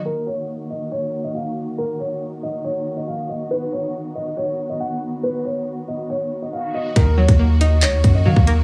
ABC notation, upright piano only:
X:1
M:4/4
L:1/16
Q:1/4=139
K:Ebm
V:1 name="Upright piano"
B2 d2 z2 e2 d3 e f2 z2 | B2 d2 z2 e2 d3 e f2 e2 | =B2 d2 z2 ^d2 _d3 ^d ^f2 z2 | =B2 d2 z2 ^d2 _d3 ^d f2 d2 |
B2 d2 z2 e2 d3 e f2 z2 |]